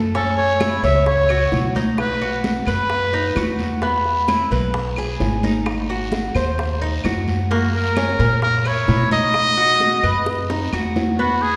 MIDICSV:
0, 0, Header, 1, 5, 480
1, 0, Start_track
1, 0, Tempo, 460123
1, 150, Time_signature, 4, 2, 24, 8
1, 12061, End_track
2, 0, Start_track
2, 0, Title_t, "Muted trumpet"
2, 0, Program_c, 0, 59
2, 166, Note_on_c, 0, 69, 83
2, 382, Note_off_c, 0, 69, 0
2, 392, Note_on_c, 0, 73, 88
2, 837, Note_off_c, 0, 73, 0
2, 885, Note_on_c, 0, 76, 88
2, 1101, Note_off_c, 0, 76, 0
2, 1120, Note_on_c, 0, 73, 83
2, 1793, Note_off_c, 0, 73, 0
2, 2074, Note_on_c, 0, 71, 97
2, 2518, Note_off_c, 0, 71, 0
2, 2791, Note_on_c, 0, 71, 94
2, 3708, Note_off_c, 0, 71, 0
2, 7854, Note_on_c, 0, 66, 77
2, 8065, Note_off_c, 0, 66, 0
2, 8094, Note_on_c, 0, 70, 89
2, 8759, Note_off_c, 0, 70, 0
2, 8791, Note_on_c, 0, 70, 88
2, 9046, Note_on_c, 0, 73, 95
2, 9062, Note_off_c, 0, 70, 0
2, 9512, Note_off_c, 0, 73, 0
2, 9518, Note_on_c, 0, 75, 104
2, 11152, Note_off_c, 0, 75, 0
2, 11669, Note_on_c, 0, 66, 81
2, 11914, Note_on_c, 0, 68, 94
2, 11930, Note_off_c, 0, 66, 0
2, 12061, Note_off_c, 0, 68, 0
2, 12061, End_track
3, 0, Start_track
3, 0, Title_t, "Cuban tres"
3, 0, Program_c, 1, 25
3, 0, Note_on_c, 1, 69, 65
3, 138, Note_off_c, 1, 69, 0
3, 155, Note_on_c, 1, 61, 70
3, 618, Note_off_c, 1, 61, 0
3, 632, Note_on_c, 1, 64, 62
3, 864, Note_off_c, 1, 64, 0
3, 873, Note_on_c, 1, 73, 65
3, 1337, Note_off_c, 1, 73, 0
3, 1356, Note_on_c, 1, 66, 72
3, 1819, Note_off_c, 1, 66, 0
3, 1836, Note_on_c, 1, 63, 69
3, 2298, Note_off_c, 1, 63, 0
3, 2312, Note_on_c, 1, 66, 59
3, 2776, Note_off_c, 1, 66, 0
3, 2792, Note_on_c, 1, 71, 67
3, 3257, Note_off_c, 1, 71, 0
3, 3271, Note_on_c, 1, 63, 69
3, 3503, Note_off_c, 1, 63, 0
3, 3513, Note_on_c, 1, 66, 59
3, 3977, Note_off_c, 1, 66, 0
3, 3991, Note_on_c, 1, 59, 69
3, 4456, Note_off_c, 1, 59, 0
3, 4470, Note_on_c, 1, 64, 64
3, 4702, Note_off_c, 1, 64, 0
3, 4712, Note_on_c, 1, 71, 61
3, 5176, Note_off_c, 1, 71, 0
3, 5197, Note_on_c, 1, 68, 72
3, 5658, Note_off_c, 1, 68, 0
3, 5674, Note_on_c, 1, 63, 64
3, 6137, Note_off_c, 1, 63, 0
3, 6152, Note_on_c, 1, 66, 64
3, 6615, Note_off_c, 1, 66, 0
3, 6629, Note_on_c, 1, 72, 63
3, 7094, Note_off_c, 1, 72, 0
3, 7111, Note_on_c, 1, 63, 70
3, 7342, Note_off_c, 1, 63, 0
3, 7351, Note_on_c, 1, 66, 60
3, 7815, Note_off_c, 1, 66, 0
3, 7833, Note_on_c, 1, 58, 70
3, 8296, Note_off_c, 1, 58, 0
3, 8311, Note_on_c, 1, 61, 57
3, 8542, Note_off_c, 1, 61, 0
3, 8551, Note_on_c, 1, 70, 62
3, 9015, Note_off_c, 1, 70, 0
3, 9028, Note_on_c, 1, 64, 68
3, 9494, Note_off_c, 1, 64, 0
3, 9507, Note_on_c, 1, 63, 68
3, 9974, Note_off_c, 1, 63, 0
3, 9987, Note_on_c, 1, 66, 65
3, 10453, Note_off_c, 1, 66, 0
3, 10469, Note_on_c, 1, 71, 65
3, 10935, Note_off_c, 1, 71, 0
3, 10953, Note_on_c, 1, 63, 66
3, 11183, Note_off_c, 1, 63, 0
3, 11196, Note_on_c, 1, 66, 66
3, 11658, Note_off_c, 1, 66, 0
3, 11674, Note_on_c, 1, 59, 69
3, 12061, Note_off_c, 1, 59, 0
3, 12061, End_track
4, 0, Start_track
4, 0, Title_t, "Upright bass"
4, 0, Program_c, 2, 32
4, 0, Note_on_c, 2, 42, 81
4, 804, Note_off_c, 2, 42, 0
4, 864, Note_on_c, 2, 37, 85
4, 1545, Note_off_c, 2, 37, 0
4, 1585, Note_on_c, 2, 35, 80
4, 2722, Note_off_c, 2, 35, 0
4, 2783, Note_on_c, 2, 42, 82
4, 3464, Note_off_c, 2, 42, 0
4, 3506, Note_on_c, 2, 40, 84
4, 4641, Note_off_c, 2, 40, 0
4, 4703, Note_on_c, 2, 35, 81
4, 5384, Note_off_c, 2, 35, 0
4, 5424, Note_on_c, 2, 32, 80
4, 6560, Note_off_c, 2, 32, 0
4, 6625, Note_on_c, 2, 39, 88
4, 7305, Note_off_c, 2, 39, 0
4, 7346, Note_on_c, 2, 42, 89
4, 8481, Note_off_c, 2, 42, 0
4, 8547, Note_on_c, 2, 46, 89
4, 9226, Note_off_c, 2, 46, 0
4, 9268, Note_on_c, 2, 47, 83
4, 10402, Note_off_c, 2, 47, 0
4, 10465, Note_on_c, 2, 42, 79
4, 11145, Note_off_c, 2, 42, 0
4, 11191, Note_on_c, 2, 40, 75
4, 12061, Note_off_c, 2, 40, 0
4, 12061, End_track
5, 0, Start_track
5, 0, Title_t, "Drums"
5, 147, Note_on_c, 9, 63, 34
5, 151, Note_on_c, 9, 74, 63
5, 155, Note_on_c, 9, 60, 65
5, 251, Note_off_c, 9, 63, 0
5, 255, Note_off_c, 9, 74, 0
5, 260, Note_off_c, 9, 60, 0
5, 392, Note_on_c, 9, 63, 30
5, 398, Note_on_c, 9, 60, 33
5, 497, Note_off_c, 9, 63, 0
5, 502, Note_off_c, 9, 60, 0
5, 626, Note_on_c, 9, 73, 62
5, 628, Note_on_c, 9, 75, 52
5, 632, Note_on_c, 9, 63, 91
5, 634, Note_on_c, 9, 60, 49
5, 730, Note_off_c, 9, 73, 0
5, 733, Note_off_c, 9, 75, 0
5, 736, Note_off_c, 9, 63, 0
5, 738, Note_off_c, 9, 60, 0
5, 871, Note_on_c, 9, 73, 64
5, 877, Note_on_c, 9, 60, 32
5, 878, Note_on_c, 9, 63, 29
5, 975, Note_off_c, 9, 73, 0
5, 981, Note_off_c, 9, 60, 0
5, 982, Note_off_c, 9, 63, 0
5, 1109, Note_on_c, 9, 74, 62
5, 1110, Note_on_c, 9, 60, 64
5, 1214, Note_off_c, 9, 60, 0
5, 1214, Note_off_c, 9, 74, 0
5, 1346, Note_on_c, 9, 75, 57
5, 1347, Note_on_c, 9, 60, 29
5, 1358, Note_on_c, 9, 63, 29
5, 1450, Note_off_c, 9, 75, 0
5, 1452, Note_off_c, 9, 60, 0
5, 1462, Note_off_c, 9, 63, 0
5, 1585, Note_on_c, 9, 60, 33
5, 1585, Note_on_c, 9, 61, 77
5, 1588, Note_on_c, 9, 73, 61
5, 1597, Note_on_c, 9, 63, 70
5, 1690, Note_off_c, 9, 60, 0
5, 1690, Note_off_c, 9, 61, 0
5, 1692, Note_off_c, 9, 73, 0
5, 1702, Note_off_c, 9, 63, 0
5, 1825, Note_on_c, 9, 73, 64
5, 1843, Note_on_c, 9, 63, 76
5, 1929, Note_off_c, 9, 73, 0
5, 1947, Note_off_c, 9, 63, 0
5, 2061, Note_on_c, 9, 74, 62
5, 2067, Note_on_c, 9, 60, 65
5, 2068, Note_on_c, 9, 75, 58
5, 2077, Note_on_c, 9, 63, 32
5, 2165, Note_off_c, 9, 74, 0
5, 2171, Note_off_c, 9, 60, 0
5, 2172, Note_off_c, 9, 75, 0
5, 2181, Note_off_c, 9, 63, 0
5, 2309, Note_on_c, 9, 60, 30
5, 2311, Note_on_c, 9, 63, 29
5, 2413, Note_off_c, 9, 60, 0
5, 2416, Note_off_c, 9, 63, 0
5, 2545, Note_on_c, 9, 73, 68
5, 2547, Note_on_c, 9, 63, 85
5, 2549, Note_on_c, 9, 60, 51
5, 2649, Note_off_c, 9, 73, 0
5, 2651, Note_off_c, 9, 63, 0
5, 2653, Note_off_c, 9, 60, 0
5, 2780, Note_on_c, 9, 75, 57
5, 2783, Note_on_c, 9, 73, 64
5, 2791, Note_on_c, 9, 60, 30
5, 2792, Note_on_c, 9, 63, 31
5, 2885, Note_off_c, 9, 75, 0
5, 2887, Note_off_c, 9, 73, 0
5, 2896, Note_off_c, 9, 60, 0
5, 2896, Note_off_c, 9, 63, 0
5, 3021, Note_on_c, 9, 60, 61
5, 3024, Note_on_c, 9, 74, 63
5, 3029, Note_on_c, 9, 63, 32
5, 3125, Note_off_c, 9, 60, 0
5, 3128, Note_off_c, 9, 74, 0
5, 3133, Note_off_c, 9, 63, 0
5, 3262, Note_on_c, 9, 60, 30
5, 3269, Note_on_c, 9, 63, 28
5, 3366, Note_off_c, 9, 60, 0
5, 3374, Note_off_c, 9, 63, 0
5, 3501, Note_on_c, 9, 60, 32
5, 3501, Note_on_c, 9, 61, 73
5, 3503, Note_on_c, 9, 73, 67
5, 3505, Note_on_c, 9, 75, 58
5, 3511, Note_on_c, 9, 63, 71
5, 3606, Note_off_c, 9, 60, 0
5, 3606, Note_off_c, 9, 61, 0
5, 3608, Note_off_c, 9, 73, 0
5, 3609, Note_off_c, 9, 75, 0
5, 3615, Note_off_c, 9, 63, 0
5, 3743, Note_on_c, 9, 73, 62
5, 3749, Note_on_c, 9, 63, 77
5, 3847, Note_off_c, 9, 73, 0
5, 3853, Note_off_c, 9, 63, 0
5, 3983, Note_on_c, 9, 60, 66
5, 3988, Note_on_c, 9, 74, 61
5, 3993, Note_on_c, 9, 63, 32
5, 4088, Note_off_c, 9, 60, 0
5, 4092, Note_off_c, 9, 74, 0
5, 4097, Note_off_c, 9, 63, 0
5, 4227, Note_on_c, 9, 60, 30
5, 4230, Note_on_c, 9, 63, 28
5, 4331, Note_off_c, 9, 60, 0
5, 4335, Note_off_c, 9, 63, 0
5, 4464, Note_on_c, 9, 60, 50
5, 4469, Note_on_c, 9, 73, 63
5, 4469, Note_on_c, 9, 75, 54
5, 4470, Note_on_c, 9, 63, 85
5, 4568, Note_off_c, 9, 60, 0
5, 4573, Note_off_c, 9, 73, 0
5, 4573, Note_off_c, 9, 75, 0
5, 4574, Note_off_c, 9, 63, 0
5, 4704, Note_on_c, 9, 60, 31
5, 4708, Note_on_c, 9, 73, 61
5, 4716, Note_on_c, 9, 63, 32
5, 4808, Note_off_c, 9, 60, 0
5, 4812, Note_off_c, 9, 73, 0
5, 4820, Note_off_c, 9, 63, 0
5, 4944, Note_on_c, 9, 60, 64
5, 4946, Note_on_c, 9, 74, 59
5, 5049, Note_off_c, 9, 60, 0
5, 5051, Note_off_c, 9, 74, 0
5, 5179, Note_on_c, 9, 75, 57
5, 5186, Note_on_c, 9, 60, 31
5, 5196, Note_on_c, 9, 63, 30
5, 5283, Note_off_c, 9, 75, 0
5, 5290, Note_off_c, 9, 60, 0
5, 5300, Note_off_c, 9, 63, 0
5, 5428, Note_on_c, 9, 60, 32
5, 5428, Note_on_c, 9, 61, 79
5, 5429, Note_on_c, 9, 73, 61
5, 5434, Note_on_c, 9, 63, 74
5, 5532, Note_off_c, 9, 60, 0
5, 5532, Note_off_c, 9, 61, 0
5, 5534, Note_off_c, 9, 73, 0
5, 5538, Note_off_c, 9, 63, 0
5, 5668, Note_on_c, 9, 73, 67
5, 5669, Note_on_c, 9, 63, 84
5, 5773, Note_off_c, 9, 63, 0
5, 5773, Note_off_c, 9, 73, 0
5, 5904, Note_on_c, 9, 75, 62
5, 5907, Note_on_c, 9, 60, 67
5, 5907, Note_on_c, 9, 74, 58
5, 5912, Note_on_c, 9, 63, 30
5, 6008, Note_off_c, 9, 75, 0
5, 6011, Note_off_c, 9, 60, 0
5, 6012, Note_off_c, 9, 74, 0
5, 6017, Note_off_c, 9, 63, 0
5, 6150, Note_on_c, 9, 63, 31
5, 6154, Note_on_c, 9, 60, 33
5, 6254, Note_off_c, 9, 63, 0
5, 6258, Note_off_c, 9, 60, 0
5, 6381, Note_on_c, 9, 63, 87
5, 6390, Note_on_c, 9, 60, 50
5, 6393, Note_on_c, 9, 73, 65
5, 6486, Note_off_c, 9, 63, 0
5, 6494, Note_off_c, 9, 60, 0
5, 6497, Note_off_c, 9, 73, 0
5, 6620, Note_on_c, 9, 75, 57
5, 6629, Note_on_c, 9, 73, 65
5, 6630, Note_on_c, 9, 63, 30
5, 6635, Note_on_c, 9, 60, 33
5, 6725, Note_off_c, 9, 75, 0
5, 6734, Note_off_c, 9, 63, 0
5, 6734, Note_off_c, 9, 73, 0
5, 6739, Note_off_c, 9, 60, 0
5, 6866, Note_on_c, 9, 74, 62
5, 6868, Note_on_c, 9, 63, 29
5, 6875, Note_on_c, 9, 60, 65
5, 6970, Note_off_c, 9, 74, 0
5, 6972, Note_off_c, 9, 63, 0
5, 6979, Note_off_c, 9, 60, 0
5, 7108, Note_on_c, 9, 63, 30
5, 7117, Note_on_c, 9, 60, 32
5, 7212, Note_off_c, 9, 63, 0
5, 7221, Note_off_c, 9, 60, 0
5, 7342, Note_on_c, 9, 75, 61
5, 7351, Note_on_c, 9, 73, 67
5, 7354, Note_on_c, 9, 63, 68
5, 7359, Note_on_c, 9, 60, 32
5, 7359, Note_on_c, 9, 61, 77
5, 7446, Note_off_c, 9, 75, 0
5, 7455, Note_off_c, 9, 73, 0
5, 7458, Note_off_c, 9, 63, 0
5, 7464, Note_off_c, 9, 60, 0
5, 7464, Note_off_c, 9, 61, 0
5, 7592, Note_on_c, 9, 63, 83
5, 7593, Note_on_c, 9, 73, 60
5, 7696, Note_off_c, 9, 63, 0
5, 7697, Note_off_c, 9, 73, 0
5, 7831, Note_on_c, 9, 63, 30
5, 7832, Note_on_c, 9, 74, 66
5, 7840, Note_on_c, 9, 60, 64
5, 7936, Note_off_c, 9, 63, 0
5, 7936, Note_off_c, 9, 74, 0
5, 7944, Note_off_c, 9, 60, 0
5, 8073, Note_on_c, 9, 60, 30
5, 8074, Note_on_c, 9, 63, 30
5, 8178, Note_off_c, 9, 60, 0
5, 8178, Note_off_c, 9, 63, 0
5, 8301, Note_on_c, 9, 75, 54
5, 8309, Note_on_c, 9, 63, 84
5, 8311, Note_on_c, 9, 73, 64
5, 8312, Note_on_c, 9, 60, 54
5, 8405, Note_off_c, 9, 75, 0
5, 8413, Note_off_c, 9, 63, 0
5, 8416, Note_off_c, 9, 60, 0
5, 8416, Note_off_c, 9, 73, 0
5, 8546, Note_on_c, 9, 73, 62
5, 8548, Note_on_c, 9, 60, 32
5, 8549, Note_on_c, 9, 63, 30
5, 8650, Note_off_c, 9, 73, 0
5, 8653, Note_off_c, 9, 60, 0
5, 8653, Note_off_c, 9, 63, 0
5, 8783, Note_on_c, 9, 74, 62
5, 8786, Note_on_c, 9, 60, 63
5, 8787, Note_on_c, 9, 63, 30
5, 8887, Note_off_c, 9, 74, 0
5, 8891, Note_off_c, 9, 60, 0
5, 8892, Note_off_c, 9, 63, 0
5, 9021, Note_on_c, 9, 75, 54
5, 9025, Note_on_c, 9, 60, 31
5, 9029, Note_on_c, 9, 63, 30
5, 9126, Note_off_c, 9, 75, 0
5, 9130, Note_off_c, 9, 60, 0
5, 9134, Note_off_c, 9, 63, 0
5, 9264, Note_on_c, 9, 60, 34
5, 9264, Note_on_c, 9, 61, 82
5, 9268, Note_on_c, 9, 73, 61
5, 9271, Note_on_c, 9, 63, 74
5, 9368, Note_off_c, 9, 60, 0
5, 9368, Note_off_c, 9, 61, 0
5, 9373, Note_off_c, 9, 73, 0
5, 9375, Note_off_c, 9, 63, 0
5, 9508, Note_on_c, 9, 73, 64
5, 9510, Note_on_c, 9, 63, 80
5, 9612, Note_off_c, 9, 73, 0
5, 9614, Note_off_c, 9, 63, 0
5, 9741, Note_on_c, 9, 75, 62
5, 9744, Note_on_c, 9, 60, 69
5, 9753, Note_on_c, 9, 63, 33
5, 9754, Note_on_c, 9, 74, 63
5, 9845, Note_off_c, 9, 75, 0
5, 9849, Note_off_c, 9, 60, 0
5, 9857, Note_off_c, 9, 63, 0
5, 9858, Note_off_c, 9, 74, 0
5, 9989, Note_on_c, 9, 60, 30
5, 9993, Note_on_c, 9, 63, 32
5, 10094, Note_off_c, 9, 60, 0
5, 10097, Note_off_c, 9, 63, 0
5, 10226, Note_on_c, 9, 63, 90
5, 10228, Note_on_c, 9, 73, 64
5, 10231, Note_on_c, 9, 60, 52
5, 10330, Note_off_c, 9, 63, 0
5, 10332, Note_off_c, 9, 73, 0
5, 10335, Note_off_c, 9, 60, 0
5, 10467, Note_on_c, 9, 75, 58
5, 10470, Note_on_c, 9, 73, 63
5, 10471, Note_on_c, 9, 63, 30
5, 10473, Note_on_c, 9, 60, 33
5, 10571, Note_off_c, 9, 75, 0
5, 10574, Note_off_c, 9, 73, 0
5, 10575, Note_off_c, 9, 63, 0
5, 10577, Note_off_c, 9, 60, 0
5, 10706, Note_on_c, 9, 60, 68
5, 10712, Note_on_c, 9, 74, 60
5, 10810, Note_off_c, 9, 60, 0
5, 10816, Note_off_c, 9, 74, 0
5, 10949, Note_on_c, 9, 63, 32
5, 10951, Note_on_c, 9, 60, 83
5, 11053, Note_off_c, 9, 63, 0
5, 11055, Note_off_c, 9, 60, 0
5, 11190, Note_on_c, 9, 73, 63
5, 11190, Note_on_c, 9, 75, 62
5, 11191, Note_on_c, 9, 63, 73
5, 11294, Note_off_c, 9, 73, 0
5, 11294, Note_off_c, 9, 75, 0
5, 11295, Note_off_c, 9, 63, 0
5, 11431, Note_on_c, 9, 73, 62
5, 11434, Note_on_c, 9, 63, 83
5, 11436, Note_on_c, 9, 61, 81
5, 11535, Note_off_c, 9, 73, 0
5, 11538, Note_off_c, 9, 63, 0
5, 11540, Note_off_c, 9, 61, 0
5, 11675, Note_on_c, 9, 74, 65
5, 11683, Note_on_c, 9, 63, 33
5, 11780, Note_off_c, 9, 74, 0
5, 11788, Note_off_c, 9, 63, 0
5, 11916, Note_on_c, 9, 63, 28
5, 12020, Note_off_c, 9, 63, 0
5, 12061, End_track
0, 0, End_of_file